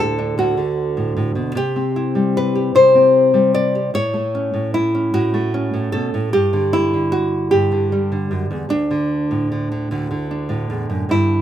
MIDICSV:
0, 0, Header, 1, 2, 480
1, 0, Start_track
1, 0, Key_signature, 2, "major"
1, 0, Tempo, 793651
1, 945, Time_signature, 6, 3, 24, 8
1, 6905, End_track
2, 0, Start_track
2, 0, Title_t, "Nylon-string guitar"
2, 0, Program_c, 0, 24
2, 0, Note_on_c, 0, 38, 75
2, 0, Note_on_c, 0, 45, 54
2, 0, Note_on_c, 0, 50, 62
2, 0, Note_on_c, 0, 69, 86
2, 112, Note_on_c, 0, 62, 41
2, 221, Note_off_c, 0, 38, 0
2, 228, Note_on_c, 0, 38, 71
2, 234, Note_on_c, 0, 66, 81
2, 340, Note_off_c, 0, 50, 0
2, 346, Note_off_c, 0, 45, 0
2, 347, Note_on_c, 0, 50, 60
2, 587, Note_on_c, 0, 45, 57
2, 698, Note_off_c, 0, 45, 0
2, 705, Note_on_c, 0, 45, 60
2, 711, Note_off_c, 0, 69, 0
2, 816, Note_off_c, 0, 45, 0
2, 818, Note_on_c, 0, 47, 60
2, 920, Note_off_c, 0, 62, 0
2, 936, Note_off_c, 0, 38, 0
2, 938, Note_on_c, 0, 48, 71
2, 942, Note_off_c, 0, 47, 0
2, 946, Note_off_c, 0, 50, 0
2, 946, Note_off_c, 0, 66, 0
2, 949, Note_on_c, 0, 67, 98
2, 1065, Note_on_c, 0, 60, 58
2, 1186, Note_on_c, 0, 64, 44
2, 1301, Note_on_c, 0, 55, 54
2, 1433, Note_on_c, 0, 71, 85
2, 1538, Note_off_c, 0, 67, 0
2, 1545, Note_on_c, 0, 67, 46
2, 1656, Note_off_c, 0, 48, 0
2, 1663, Note_on_c, 0, 48, 68
2, 1664, Note_off_c, 0, 71, 0
2, 1667, Note_on_c, 0, 72, 94
2, 1776, Note_off_c, 0, 60, 0
2, 1784, Note_on_c, 0, 60, 61
2, 2012, Note_off_c, 0, 55, 0
2, 2019, Note_on_c, 0, 55, 61
2, 2141, Note_off_c, 0, 72, 0
2, 2144, Note_on_c, 0, 74, 99
2, 2262, Note_off_c, 0, 67, 0
2, 2269, Note_on_c, 0, 67, 41
2, 2353, Note_off_c, 0, 55, 0
2, 2355, Note_off_c, 0, 48, 0
2, 2355, Note_off_c, 0, 60, 0
2, 2356, Note_off_c, 0, 64, 0
2, 2358, Note_off_c, 0, 67, 0
2, 2382, Note_on_c, 0, 45, 67
2, 2384, Note_off_c, 0, 74, 0
2, 2388, Note_on_c, 0, 73, 108
2, 2501, Note_on_c, 0, 57, 60
2, 2629, Note_on_c, 0, 61, 51
2, 2736, Note_off_c, 0, 45, 0
2, 2743, Note_on_c, 0, 45, 54
2, 2865, Note_off_c, 0, 73, 0
2, 2867, Note_on_c, 0, 64, 84
2, 2984, Note_off_c, 0, 61, 0
2, 2991, Note_on_c, 0, 61, 46
2, 3100, Note_off_c, 0, 45, 0
2, 3107, Note_on_c, 0, 45, 73
2, 3108, Note_on_c, 0, 66, 86
2, 3221, Note_off_c, 0, 57, 0
2, 3229, Note_on_c, 0, 57, 64
2, 3344, Note_off_c, 0, 61, 0
2, 3351, Note_on_c, 0, 61, 46
2, 3462, Note_off_c, 0, 45, 0
2, 3469, Note_on_c, 0, 45, 61
2, 3580, Note_off_c, 0, 66, 0
2, 3583, Note_on_c, 0, 69, 95
2, 3586, Note_off_c, 0, 45, 0
2, 3586, Note_off_c, 0, 64, 0
2, 3589, Note_on_c, 0, 47, 61
2, 3707, Note_off_c, 0, 47, 0
2, 3714, Note_on_c, 0, 45, 66
2, 3798, Note_off_c, 0, 57, 0
2, 3799, Note_off_c, 0, 61, 0
2, 3823, Note_off_c, 0, 69, 0
2, 3829, Note_off_c, 0, 45, 0
2, 3829, Note_on_c, 0, 67, 102
2, 3831, Note_on_c, 0, 43, 75
2, 3950, Note_on_c, 0, 50, 64
2, 4071, Note_on_c, 0, 64, 87
2, 4187, Note_off_c, 0, 50, 0
2, 4194, Note_on_c, 0, 50, 57
2, 4303, Note_off_c, 0, 67, 0
2, 4306, Note_on_c, 0, 66, 87
2, 4540, Note_off_c, 0, 66, 0
2, 4542, Note_on_c, 0, 67, 93
2, 4543, Note_off_c, 0, 43, 0
2, 4551, Note_on_c, 0, 43, 70
2, 4659, Note_off_c, 0, 50, 0
2, 4667, Note_on_c, 0, 50, 59
2, 4788, Note_off_c, 0, 64, 0
2, 4791, Note_on_c, 0, 55, 48
2, 4902, Note_off_c, 0, 50, 0
2, 4910, Note_on_c, 0, 50, 56
2, 5022, Note_off_c, 0, 43, 0
2, 5024, Note_on_c, 0, 42, 64
2, 5142, Note_off_c, 0, 42, 0
2, 5144, Note_on_c, 0, 40, 67
2, 5239, Note_off_c, 0, 50, 0
2, 5253, Note_off_c, 0, 40, 0
2, 5255, Note_on_c, 0, 38, 63
2, 5260, Note_off_c, 0, 55, 0
2, 5262, Note_on_c, 0, 62, 81
2, 5264, Note_off_c, 0, 67, 0
2, 5387, Note_on_c, 0, 50, 61
2, 5630, Note_on_c, 0, 45, 57
2, 5746, Note_off_c, 0, 50, 0
2, 5756, Note_on_c, 0, 50, 42
2, 5869, Note_off_c, 0, 50, 0
2, 5877, Note_on_c, 0, 50, 43
2, 5981, Note_off_c, 0, 38, 0
2, 5991, Note_off_c, 0, 50, 0
2, 5994, Note_on_c, 0, 38, 74
2, 5998, Note_on_c, 0, 50, 43
2, 6106, Note_off_c, 0, 50, 0
2, 6108, Note_off_c, 0, 45, 0
2, 6113, Note_on_c, 0, 50, 62
2, 6227, Note_off_c, 0, 62, 0
2, 6235, Note_on_c, 0, 62, 45
2, 6344, Note_on_c, 0, 45, 60
2, 6468, Note_off_c, 0, 38, 0
2, 6470, Note_on_c, 0, 40, 65
2, 6587, Note_off_c, 0, 40, 0
2, 6590, Note_on_c, 0, 42, 60
2, 6682, Note_off_c, 0, 62, 0
2, 6705, Note_off_c, 0, 42, 0
2, 6706, Note_off_c, 0, 45, 0
2, 6708, Note_on_c, 0, 43, 67
2, 6720, Note_on_c, 0, 64, 83
2, 6905, Note_off_c, 0, 43, 0
2, 6905, Note_off_c, 0, 50, 0
2, 6905, Note_off_c, 0, 64, 0
2, 6905, End_track
0, 0, End_of_file